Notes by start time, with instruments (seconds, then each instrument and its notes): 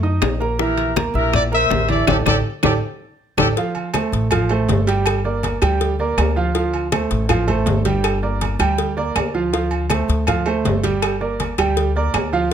Already playing: upright bass F#2
0.03 grand piano D#4 D#5 D#6, high conga
0.21 upright bass A#1, high bongo, low bongo, high conga, high timbale, low timbale, claves
0.40 grand piano A#3 A#4 A#5, high bongo, high conga
0.59 grand piano E3 E4 E5, trumpet section G4 A#4, high bongo, high conga
0.78 high bongo, high conga, high timbale
0.96 grand piano A#3 A#4 A#5, high bongo, high conga, high timbale, low timbale, claves
1.14 upright bass A#1, grand piano E4 E5 E6, trumpet section G4 A#4, high bongo, high conga
1.33 trumpet section A#4 D5, high bongo, high conga, low conga, high timbale, claves
1.52 grand piano A#3 A#4 A#5, trumpet section C5 E5, high bongo, high conga
1.70 upright bass A1, high bongo, low bongo, high conga, high timbale, low timbale
1.88 grand piano E3 E4 E5, trumpet section A4 D5, high conga, high timbale
2.07 upright bass A1, grand piano G4 A4 D5, trumpet section G4 A4 D5, low bongo, high conga, high timbale, claves
2.26 upright bass A1, grand piano G4 A4 D5, trumpet section G4 A4 D5, low bongo, high conga, high timbale, claves
2.63 upright bass A1, grand piano G4 A4 D5, trumpet section G4 A4 D5, low bongo, high conga, high timbale, claves
3.37 upright bass A1, grand piano G4 A4 D5, trumpet section G4 A4 D5, low bongo, high conga, high timbale, claves
3.57 grand piano F3 F4 F5, cowbell, high conga
3.75 high conga, low agogo
3.94 grand piano A3 A4 C5, cowbell, high conga, low timbale, low agogo, claves
4.12 upright bass A1, cowbell, high conga
4.31 grand piano F3 F4 F5, cowbell, high conga, low conga, low agogo, claves
4.49 grand piano A3 A4 C5, high conga, low agogo
4.69 upright bass G1, cowbell, high conga, low timbale
4.87 grand piano G3 G4 G5, cowbell, low agogo
5.06 cowbell, high conga, low agogo, claves
5.24 grand piano A#3 A#4 D5, high conga
5.43 cowbell, high conga, low timbale, low agogo
5.62 upright bass D2, grand piano G3 G4 G5, cowbell, low agogo, claves
5.81 cowbell, high conga
5.99 grand piano A#3 A#4 D5, high conga
6.17 upright bass D2, cowbell, high conga, low timbale, low agogo, claves
6.36 grand piano F3 F4 F5, high conga
6.55 grand piano F3 F4 F5, cowbell, high conga
6.74 high conga, low agogo
6.92 grand piano A3 A4 C5, cowbell, high conga, low timbale, low agogo, claves
7.11 upright bass A1, cowbell, high conga
7.29 grand piano F3 F4 F5, cowbell, high conga, low conga, low agogo, claves
7.47 grand piano A3 A4 C5, high conga, low conga, low agogo
7.66 upright bass G1, cowbell, high conga, low timbale
7.85 grand piano G3 G4 G5, cowbell, high conga, low agogo
8.04 cowbell, high conga, low agogo, claves
8.22 grand piano A#3 A#4 D5, high conga
8.41 cowbell, high conga, low timbale, low agogo
8.59 upright bass D2, grand piano G3 G4 G5, cowbell, low agogo, claves
8.78 cowbell, high conga
8.97 grand piano A#3 A#4 D5, high conga
9.15 upright bass D2, cowbell, high conga, low timbale, low agogo, claves
9.34 grand piano F3 F4 F5, high conga
9.53 grand piano F3 F4 F5, cowbell, high conga
9.71 high conga, low agogo
9.90 grand piano A3 A4 C5, cowbell, high conga, low timbale, low agogo, claves
10.08 upright bass D2, cowbell, high conga
10.27 grand piano F3 F4 F5, cowbell, high conga, low conga, low agogo, claves
10.46 grand piano A3 A4 C5, high conga, low agogo
10.64 upright bass G1, cowbell, high conga, low timbale
10.83 grand piano G3 G4 G5, cowbell, high conga, low agogo
11.02 cowbell, high conga, low agogo, claves
11.20 grand piano A#3 A#4 D5, high conga
11.40 cowbell, high conga, low timbale, low agogo
11.58 upright bass D2, grand piano G3 G4 G5, cowbell, low agogo, claves
11.77 cowbell, high conga
11.96 grand piano A#3 A#4 D5, high conga
12.14 upright bass D2, cowbell, high conga, low timbale, low agogo, claves
12.33 grand piano F3 F4 F5, high conga